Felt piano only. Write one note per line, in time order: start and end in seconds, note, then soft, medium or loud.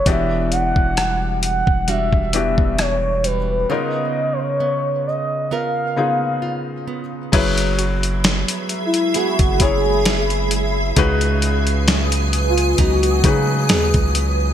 0.06 1.42 E3 medium
0.06 1.42 B3 medium
0.06 1.43 D4 medium
0.06 1.43 F#4 medium
0.06 1.43 G4 medium
2.33 3.36 E3 medium
2.33 3.37 B3 medium
2.33 3.37 D4 medium
2.33 3.37 F#4 medium
2.33 3.37 G4 medium
3.69 5.06 C#3 medium
3.69 5.06 B3 medium
3.69 5.06 D#4 medium
3.69 5.07 F4 medium
3.69 5.07 A#4 medium
5.96 7.00 C#3 medium
5.96 7.00 B3 medium
5.96 7.00 D#4 medium
5.96 7.00 F4 medium
5.96 7.01 G#4 medium
7.32 8.69 F#3 medium
7.32 8.69 C#4 medium
7.32 8.69 E4 medium
7.32 8.70 G#4 medium
7.32 8.70 B4 loud
9.60 10.63 F#3 medium
9.60 10.64 C#4 medium
9.60 10.64 E4 medium
9.60 10.64 G#4 medium
9.60 10.64 C#5 medium
10.96 12.33 C#3 loud
10.96 12.33 G#3 medium
10.96 12.33 D#4 medium
10.96 12.34 F#4 medium
10.96 12.34 B4 loud
13.24 14.27 C#3 medium
13.24 14.27 G#3 medium
13.24 14.28 D#4 medium
13.24 14.28 F#4 medium
13.24 14.28 B4 medium